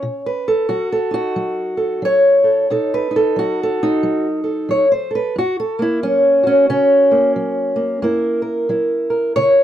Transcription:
0.00 0.65 B2 medium
0.00 0.26 C#5 medium
0.26 0.68 B4 medium
0.48 0.91 A4 medium
0.69 1.32 F#3 medium
0.69 1.13 F#4 medium
0.92 1.76 A4 medium
1.11 2.68 D#4 soft
1.11 2.03 F#4 medium
1.36 1.98 F#3 medium
1.77 2.43 A4 soft
2.02 2.64 F#3 medium
2.02 2.93 C#5 medium
2.44 2.67 A4 soft
2.70 3.32 B2 medium
2.70 3.10 D#4 medium
2.70 3.15 A4 medium
2.94 3.38 B4 medium
3.11 3.82 D#4 soft
3.16 3.60 A4 medium
3.36 3.98 F#3 medium
3.36 4.27 F#4 medium
3.63 4.43 A4 medium
3.83 4.85 D#4 medium
4.03 4.65 F#3 medium
4.44 5.09 A4 soft
4.69 5.31 F#3 medium
4.69 4.91 C#5 medium
4.92 5.14 C5 medium
5.11 5.34 A4 soft
5.15 5.37 B4 medium
5.36 5.98 F#2 medium
5.36 5.59 F#4 medium
5.60 5.82 A4 medium
5.79 7.10 A#3 soft
5.79 6.03 E4 medium
6.03 6.65 F#3 medium
6.03 6.46 C#4 medium
6.43 6.68 C#4 medium
6.43 8.03 F#4 soft
6.70 7.31 C#3 medium
6.70 8.03 C#4 loud
7.11 7.75 A#3 soft
7.36 7.98 F#3 medium
7.76 8.01 A#3 soft
8.02 8.64 F#2 medium
8.02 9.63 A#3 soft
8.02 8.69 E4 soft
8.02 8.41 A#4 medium
8.42 9.09 A#4 soft
8.69 9.30 F#3 medium
8.69 9.63 E4 soft
9.10 9.35 A#4 soft
9.36 9.63 C#3 medium
9.36 9.63 C#5 loud

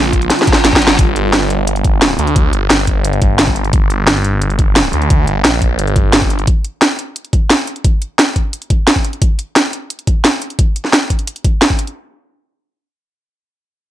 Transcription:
0.00 0.29 A#1 medium
0.00 0.95 D3 medium
0.00 0.95 G3 medium
0.00 0.95 F4 medium
0.13 kick medium
0.13 closed hi-hat medium
0.22 closed hi-hat soft
0.30 snare medium
0.30 closed hi-hat loud
0.30 reverse cymbal medium
0.39 snare medium
0.39 closed hi-hat soft
0.47 kick loud
0.47 closed hi-hat medium
0.53 snare medium
0.65 0.97 G1 medium
0.65 snare medium
0.65 closed hi-hat loud
0.73 kick medium
0.73 snare medium
0.82 closed hi-hat medium
0.87 snare loud
0.87 closed hi-hat soft
0.99 1.83 G1 medium
0.99 kick loud
0.99 closed hi-hat loud
1.16 closed hi-hat medium
1.33 snare loud
1.33 closed hi-hat medium
1.50 closed hi-hat medium
1.67 closed hi-hat loud
1.76 closed hi-hat soft
1.84 2.17 G1 medium
1.84 kick loud
1.84 closed hi-hat medium
2.02 snare loud
2.02 closed hi-hat medium
2.19 2.52 D2 loud
2.19 closed hi-hat medium
2.27 closed hi-hat soft
2.36 kick loud
2.36 closed hi-hat medium
2.53 2.69 G1 medium
2.53 closed hi-hat medium
2.70 3.20 G1 medium
2.70 snare loud
2.70 closed hi-hat medium
2.87 kick medium
2.87 closed hi-hat medium
3.05 closed hi-hat medium
3.13 closed hi-hat soft
3.22 3.37 G1 loud
3.22 kick loud
3.22 closed hi-hat medium
3.39 3.72 G1 loud
3.39 snare loud
3.39 closed hi-hat medium
3.47 kick medium
3.56 closed hi-hat medium
3.64 closed hi-hat soft
3.73 4.57 G1 medium
3.73 kick loud
3.73 closed hi-hat medium
3.90 closed hi-hat medium
4.07 snare loud
4.07 closed hi-hat medium
4.24 closed hi-hat medium
4.42 closed hi-hat medium
4.50 closed hi-hat soft
4.59 4.92 G1 medium
4.59 kick loud
4.59 closed hi-hat medium
4.76 snare loud
4.76 closed hi-hat medium
4.93 5.26 D2 medium
4.93 closed hi-hat medium
5.02 closed hi-hat soft
5.10 kick loud
5.10 closed hi-hat medium
5.27 5.43 G1 loud
5.27 closed hi-hat medium
5.45 5.77 A#1 medium
5.45 snare loud
5.45 closed hi-hat medium
5.62 kick medium
5.62 closed hi-hat medium
5.79 6.46 G1 loud
5.79 closed hi-hat medium
5.87 closed hi-hat soft
5.96 kick loud
5.96 closed hi-hat medium
6.13 snare loud
6.13 closed hi-hat medium
6.22 kick medium
6.30 closed hi-hat medium
6.39 closed hi-hat soft
6.47 kick loud
6.47 closed hi-hat medium
6.65 closed hi-hat medium
6.82 snare loud
6.82 closed hi-hat medium
6.99 closed hi-hat medium
7.16 closed hi-hat medium
7.25 closed hi-hat soft
7.33 kick loud
7.33 closed hi-hat medium
7.50 snare loud
7.50 closed hi-hat medium
7.67 closed hi-hat medium
7.76 closed hi-hat soft
7.84 kick loud
7.84 closed hi-hat medium
8.02 closed hi-hat medium
8.19 snare loud
8.19 closed hi-hat medium
8.36 kick medium
8.36 closed hi-hat medium
8.53 closed hi-hat medium
8.62 closed hi-hat soft
8.70 kick loud
8.70 closed hi-hat medium
8.87 snare loud
8.87 closed hi-hat medium
8.96 kick medium
9.05 closed hi-hat medium
9.13 closed hi-hat soft
9.22 kick loud
9.22 closed hi-hat medium
9.39 closed hi-hat medium
9.56 snare loud
9.56 closed hi-hat medium
9.73 closed hi-hat medium
9.90 closed hi-hat medium
9.99 closed hi-hat soft
10.07 kick medium
10.07 closed hi-hat medium
10.25 snare loud
10.25 closed hi-hat medium
10.42 closed hi-hat medium
10.50 closed hi-hat soft
10.59 kick loud
10.59 closed hi-hat medium
10.76 closed hi-hat medium
10.85 snare soft
10.93 snare loud
10.93 closed hi-hat medium
11.10 kick medium
11.10 closed hi-hat medium
11.19 closed hi-hat soft
11.27 closed hi-hat loud
11.36 closed hi-hat soft
11.45 kick loud
11.45 closed hi-hat medium
11.62 snare loud
11.62 closed hi-hat medium
11.70 kick medium
11.79 closed hi-hat medium
11.87 closed hi-hat soft

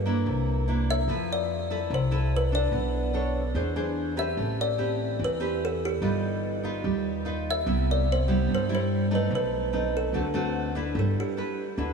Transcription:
0.00 0.22 G2 medium
0.00 0.43 G4 medium
0.06 0.64 A#3 medium
0.06 0.64 D4 medium
0.06 0.64 E4 medium
0.26 1.04 C2 medium
0.26 1.07 C3 medium
0.68 1.07 A#3 medium
0.68 1.07 D4 soft
0.68 1.07 E4 medium
0.91 1.27 E5 loud
1.08 1.86 F2 medium
1.08 1.88 F3 medium
1.08 1.49 E4 soft
1.08 1.49 A4 medium
1.08 1.50 B4 medium
1.32 1.88 D5 medium
1.70 2.08 E4 medium
1.70 2.08 A4 medium
1.70 2.08 B4 medium
1.90 2.69 C2 medium
1.90 2.71 C3 medium
1.94 2.35 C5 medium
2.11 2.49 E4 medium
2.11 2.49 A4 medium
2.11 2.49 B4 medium
2.37 2.55 B4 medium
2.52 3.11 D4 medium
2.52 3.11 A4 medium
2.52 3.73 D5 medium
2.72 3.50 B1 medium
2.72 3.53 B3 medium
3.14 3.41 D4 medium
3.14 3.42 A4 medium
3.14 3.42 C#5 medium
3.55 4.33 E2 medium
3.55 4.35 E3 medium
3.55 3.72 D4 soft
3.55 3.72 G#4 soft
3.55 3.73 C5 medium
3.76 4.14 D4 medium
3.76 4.14 G#4 medium
3.76 4.14 C5 medium
4.17 4.77 C4 medium
4.17 4.77 G4 medium
4.17 4.78 B4 medium
4.17 4.60 E5 medium
4.37 5.15 A1 medium
4.37 5.17 A3 medium
4.61 5.23 D5 loud
4.78 5.37 C4 medium
4.78 5.37 G4 medium
4.78 5.37 B4 medium
5.19 5.98 E2 medium
5.19 6.00 E3 medium
5.24 5.64 B4 medium
5.40 5.98 C4 medium
5.40 5.99 G4 medium
5.40 5.99 B4 medium
5.65 5.84 A4 medium
5.85 7.03 G4 medium
6.02 6.80 G1 medium
6.02 6.82 G3 medium
6.02 6.60 D#4 medium
6.02 6.60 F4 medium
6.02 6.61 B4 medium
6.63 7.22 D#4 medium
6.63 7.22 F4 medium
6.63 7.22 B4 medium
6.84 7.62 D#2 medium
6.84 7.64 G3 medium
7.25 7.63 D#4 medium
7.25 7.63 F4 medium
7.25 7.63 B4 medium
7.51 7.90 E5 medium
7.66 8.45 C2 medium
7.66 8.46 C3 medium
7.66 8.07 G3 medium
7.66 8.07 B3 medium
7.66 8.07 E4 medium
7.91 8.10 D5 medium
8.12 8.52 C5 medium
8.28 8.66 G3 medium
8.28 8.66 B3 medium
8.28 8.66 E4 medium
8.48 9.27 G2 medium
8.48 9.29 G2 medium
8.55 8.73 C5 medium
8.69 9.07 G3 medium
8.69 9.07 E4 medium
8.75 9.10 C5 medium
9.11 9.69 A3 medium
9.11 9.69 D#4 medium
9.15 9.34 B4 medium
9.31 10.09 B1 medium
9.31 10.11 B2 medium
9.35 9.97 B4 medium
9.73 10.12 A3 medium
9.73 10.12 C4 soft
9.73 10.12 D#4 medium
9.97 10.73 A4 medium
10.13 10.91 D2 medium
10.13 10.94 D3 medium
10.13 10.26 A3 soft
10.13 10.26 C4 medium
10.13 10.26 F#4 medium
10.34 10.72 A3 medium
10.34 10.72 C4 medium
10.34 10.72 F#4 medium
10.75 11.35 D4 medium
10.75 11.36 E4 medium
10.75 11.36 B4 medium
10.95 11.14 G1 loud
10.95 11.77 G3 soft
10.99 11.17 A4 medium
11.20 11.76 G4 medium
11.37 11.63 D4 soft
11.37 11.64 E4 medium
11.37 11.64 B4 medium
11.77 11.93 D2 medium
11.77 11.93 D3 soft
11.77 11.93 D4 soft
11.77 11.93 E4 soft
11.77 11.93 B4 medium

